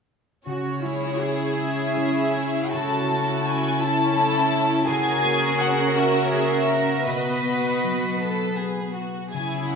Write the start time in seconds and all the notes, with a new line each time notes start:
0.46 C#3 C#4 F#4 C#5
0.84 G#3 E4 G#4
1.21 C#4 G#4
1.59 C#4 E4 E5
1.97 G#3 E4 G#4
2.36 E4
2.72 C#3 C#4 E4 F#4 A4 A5
3.09 A3 E4 A4
3.45 C#4 G#5
3.80 C#4 E4 A5
4.16 A3 E4 A4
4.52 E4
4.87 C#3 C#4 F#4 G#4 A#4 G#5
5.24 A#3
5.60 C#4 F#5
5.96 F#4 E5
6.31 A#3 G#4
6.69 F#4 A#4
7.06 B2 B3 F#4 B4 D#5
7.45 B3
7.83 F#3
8.21 F#4 A4
8.57 B3 G#4
8.95 F#4
9.32 C#3 C#4 E4 G#4 G#5
9.70 C#4 F#5